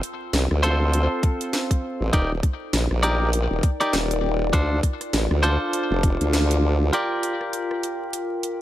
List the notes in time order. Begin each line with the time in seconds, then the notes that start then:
Already playing: F4 D5 G5
0.01 A4, closed hi-hat
0.28 C5
0.33 C2, snare, closed hi-hat
0.51 D2 A5, cross-stick
0.63 C4 F4 A4 C5, closed hi-hat
0.93 closed hi-hat
1.23 kick, closed hi-hat
1.41 closed hi-hat
1.53 snare, closed hi-hat
1.71 kick, closed hi-hat
2.01 A1
2.13 D#1 D#4 G4 A#4 D5, kick, closed hi-hat
2.43 D5, kick, closed hi-hat
2.51 A#4
2.73 A#1, snare, closed hi-hat
2.91 A#1 G5, cross-stick
3.03 D#4 G4 A#4 D5, closed hi-hat
3.33 closed hi-hat
3.51 D#1
3.63 kick, closed hi-hat
3.80 D#4 G4 A#4 D5, closed hi-hat
3.93 D#1, snare, closed hi-hat
4.11 closed hi-hat
4.53 D2 D4 F4 A4 C5, kick, closed hi-hat
4.78 C5
4.83 kick, closed hi-hat
4.94 A5
5.01 cross-stick, closed hi-hat
5.13 A1, snare, closed hi-hat
5.31 D2, cross-stick
5.43 D4 F4 A4 C5, closed hi-hat
5.73 closed hi-hat
5.91 F1
6.03 kick, closed hi-hat
6.21 D2, closed hi-hat
6.33 snare, closed hi-hat
6.51 closed hi-hat
6.93 F4 G4 A#4 D5, closed hi-hat
7.15 A#4
7.23 closed hi-hat
7.41 cross-stick
7.53 closed hi-hat
7.71 G5, cross-stick
7.83 closed hi-hat
8.13 closed hi-hat
8.43 closed hi-hat